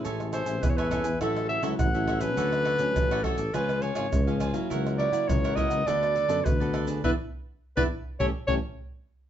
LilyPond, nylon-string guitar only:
\new Staff \with { instrumentName = "Nylon-string guitar" } { \time 4/4 \key a \major \tempo 4 = 103 << { <gis cis' e'>8. <gis cis' e'>8. <gis cis' e'>16 r16 <fis cis' e'>8. <fis cis' e'>8 <fis cis' e'>8 <fis a cis'>16~ | <fis a cis'>8. <fis a cis'>8. <fis a cis'>16 r16 <eis gis cis'>8. <eis gis cis'>8 <eis gis cis'>8 <fis bes e'>16~ | <fis bes e'>8. <fis ais e'>8. <fis ais e'>8 <b fis' a'>8 r16 <b fis' a'>8 <b fis' a'>8 <b d' gis'>16 | <b d' e'>16 r4 <b d' e'>16 r8 <g a cis'>16 r16 <g a cis'>16 r4 r16 | } \\ { a,4 e4 a,4 a,4 | d4 a,4 cis4 gis,4 | cis4 cis4 d4 d4 | r1 | } >> }